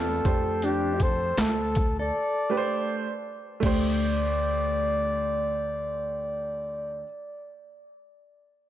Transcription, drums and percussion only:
0.25 kick, closed hi-hat
0.62 closed hi-hat
1.00 kick, closed hi-hat
1.38 snare, closed hi-hat
1.75 kick, closed hi-hat
3.63 kick, crash

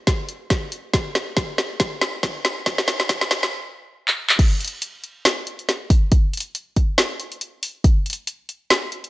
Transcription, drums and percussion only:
0.07 kick, snare, closed hi-hat
0.29 closed hi-hat
0.50 kick, snare, closed hi-hat
0.72 closed hi-hat
0.94 kick, snare, closed hi-hat
1.15 snare, closed hi-hat
1.37 kick, snare, closed hi-hat
1.58 snare, closed hi-hat
1.80 kick, snare, closed hi-hat
2.01 snare, closed hi-hat
2.23 kick, snare, closed hi-hat
2.45 snare, closed hi-hat
2.66 kick, snare, closed hi-hat
2.78 snare
2.88 snare, closed hi-hat
3.00 snare
3.09 kick, snare, closed hi-hat
3.21 snare
3.31 snare, closed hi-hat
3.43 snare
4.08 clap
4.29 clap
4.39 kick, closed hi-hat, crash
4.61 closed hi-hat
4.65 closed hi-hat
4.68 closed hi-hat
4.82 closed hi-hat
5.04 closed hi-hat
5.25 snare, closed hi-hat
5.47 closed hi-hat
5.59 closed hi-hat
5.69 snare, closed hi-hat
5.90 kick, open hi-hat
6.12 kick, closed hi-hat
6.33 closed hi-hat
6.37 closed hi-hat
6.40 closed hi-hat
6.55 closed hi-hat
6.76 kick, closed hi-hat
6.98 snare, closed hi-hat
7.20 closed hi-hat
7.32 closed hi-hat
7.41 closed hi-hat
7.63 open hi-hat
7.84 kick, closed hi-hat
8.06 closed hi-hat
8.10 closed hi-hat
8.13 closed hi-hat
8.27 closed hi-hat
8.49 closed hi-hat
8.70 snare, closed hi-hat
8.92 closed hi-hat
9.04 closed hi-hat

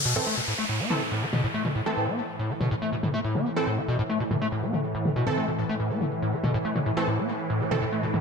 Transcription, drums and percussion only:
0.05 closed hi-hat
0.27 closed hi-hat
0.37 closed hi-hat
0.48 closed hi-hat
0.59 closed hi-hat
0.69 closed hi-hat
0.80 closed hi-hat
0.90 mid tom
1.12 closed hi-hat
1.22 closed hi-hat
1.33 closed hi-hat, mid tom
1.44 closed hi-hat
1.54 closed hi-hat
1.65 mid tom
1.75 closed hi-hat
1.97 closed hi-hat
2.07 closed hi-hat
2.18 closed hi-hat
2.29 closed hi-hat
2.39 closed hi-hat
2.50 closed hi-hat
2.61 closed hi-hat, mid tom
2.71 closed hi-hat
2.82 closed hi-hat
2.93 closed hi-hat
3.03 closed hi-hat, mid tom
3.24 closed hi-hat
3.35 closed hi-hat, mid tom
3.46 closed hi-hat
3.56 closed hi-hat
3.67 closed hi-hat
3.78 closed hi-hat
3.88 closed hi-hat
3.99 closed hi-hat
4.10 closed hi-hat
4.20 closed hi-hat
4.31 closed hi-hat, mid tom
4.42 closed hi-hat
4.52 closed hi-hat
4.63 closed hi-hat
4.73 closed hi-hat, mid tom
4.84 closed hi-hat
4.95 closed hi-hat
5.05 closed hi-hat, mid tom
5.16 closed hi-hat
5.27 closed hi-hat, mid tom
5.37 closed hi-hat
5.48 closed hi-hat
5.58 closed hi-hat
5.69 closed hi-hat
5.80 closed hi-hat
5.90 closed hi-hat
6.01 closed hi-hat, mid tom
6.12 closed hi-hat
6.22 closed hi-hat
6.33 closed hi-hat
6.44 closed hi-hat, mid tom
6.54 closed hi-hat
6.65 closed hi-hat
6.76 closed hi-hat, mid tom
6.86 closed hi-hat
7.07 closed hi-hat
7.18 closed hi-hat
7.29 closed hi-hat
7.39 closed hi-hat
7.50 closed hi-hat
7.61 closed hi-hat
7.71 closed hi-hat, mid tom
7.93 closed hi-hat
8.03 closed hi-hat
8.14 closed hi-hat, mid tom

